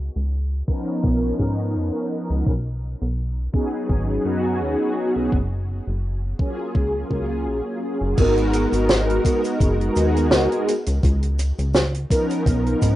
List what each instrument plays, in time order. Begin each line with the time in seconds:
0.16 analog synth bass C#2
0.67 analog polysynth F3 B3 C#4 D#4 A#4, kick
1.04 analog synth bass B1, kick
1.37 analog synth bass G#2, analog polysynth F3 B3 C#4 D#4 A#4, kick
1.75 analog synth bass F2
2.30 analog synth bass C#2
2.47 analog synth bass B1, kick
3.02 analog synth bass B1
3.52 analog polysynth F#3 B3 C#4 D#4 G#4, kick
3.89 analog synth bass G#1, kick
4.24 analog synth bass F#2, analog polysynth F#3 B3 C#4 D#4 F#4
4.61 analog synth bass D#2
5.16 analog synth bass B1
5.32 analog synth bass F#1, kick
5.88 analog synth bass F#1
6.39 analog polysynth F#3 A#3 C#4 F4 G#4, kick
6.75 analog synth bass C#2, kick
7.09 analog synth bass C#2, analog polysynth F#3 A#3 C#4 F4 G#4, kick
7.46 analog synth bass A#1
8.01 analog synth bass F#1
8.17 analog synth bass G#1, analog polysynth G#3 B3 D#4 F#4 A#4, kick, closed hi-hat, crash, cabasa
8.37 closed hi-hat
8.53 closed hi-hat, cabasa
8.72 analog synth bass G#1, closed hi-hat, cabasa
8.89 snare, closed hi-hat, cabasa
9.10 closed hi-hat
9.24 analog polysynth G#3 B3 D#4 F#4 A#4, kick, closed hi-hat, cabasa
9.44 closed hi-hat, cabasa
9.60 analog synth bass F#1, kick, closed hi-hat, cabasa
9.81 closed hi-hat
9.96 analog synth bass D#2, analog polysynth G#3 B3 D#4 F#4 G#4, closed hi-hat, cabasa
10.16 closed hi-hat, cabasa
10.31 analog synth bass C#2, snare, closed hi-hat, cabasa
10.52 closed hi-hat
10.68 closed hi-hat, cabasa
10.86 analog synth bass C#2, closed hi-hat, cabasa
11.03 analog synth bass C#2, kick, closed hi-hat, cabasa
11.23 closed hi-hat
11.39 closed hi-hat, cabasa
11.59 analog synth bass C#2, closed hi-hat, cabasa
11.74 snare, closed hi-hat, cabasa
11.94 closed hi-hat
12.09 analog polysynth F3 B3 C#4 D#4 A#4, kick, closed hi-hat, cabasa
12.30 closed hi-hat, cabasa
12.46 analog synth bass B1, kick, closed hi-hat, cabasa
12.66 closed hi-hat
12.81 analog synth bass G#2, analog polysynth F3 B3 C#4 D#4 A#4, kick, closed hi-hat, cabasa